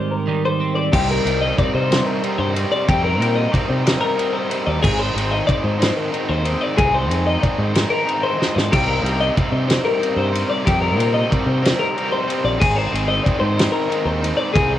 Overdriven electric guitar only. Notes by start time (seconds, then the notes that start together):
0.92 C3 G3 C4 D#4
1.24 C3 G3 C4 D#4
1.58 C3 G3 C4 D#4
1.91 C3 G3 C4 D#4
2.22 C3 G3 C4 D#4
2.54 C3 G3 C4 D#4
2.88 C3 G3 C4 D#4
3.20 C3 G3 C4 D#4
3.51 C3 G3 C4 D#4
3.85 C3 G3 C4 D#4
4.16 C3 G3 C4 D#4
4.50 C3 G3 C4 D#4
4.81 D#3 G#3 C4 D#4
5.15 D#3 G#3 C4 D#4
5.47 D#3 G#3 C4 D#4
5.79 D#3 G#3 C4 D#4
6.11 D#3 G#3 C4 D#4
6.45 D#3 G#3 C4 D#4
6.76 D#3 G#3 C4 D#4
7.07 D#3 G#3 C4 D#4
7.39 D#3 G#3 C4 D#4
7.74 D#3 G#3 C4 D#4
8.05 D#3 G#3 C4 D#4
8.38 D#3 G#3 C4 D#4
8.71 C3 G3 C4 D#4
9.02 C3 G3 C4 D#4
9.35 C3 G3 C4 D#4
9.67 C3 G3 C4 D#4
10.00 C3 G3 C4 D#4
10.33 C3 G3 C4 D#4
10.65 C3 G3 C4 D#4
10.96 C3 G3 C4 D#4
11.29 C3 G3 C4 D#4
11.62 C3 G3 C4 D#4
11.95 C3 G3 C4 D#4
12.27 C3 G3 C4 D#4
12.59 D#3 G#3 C4 D#4
12.91 D#3 G#3 C4 D#4
13.25 D#3 G#3 C4 D#4
13.57 D#3 G#3 C4 D#4
13.89 D#3 G#3 C4 D#4
14.21 D#3 G#3 C4 D#4
14.52 D#3 G#3 C4 D#4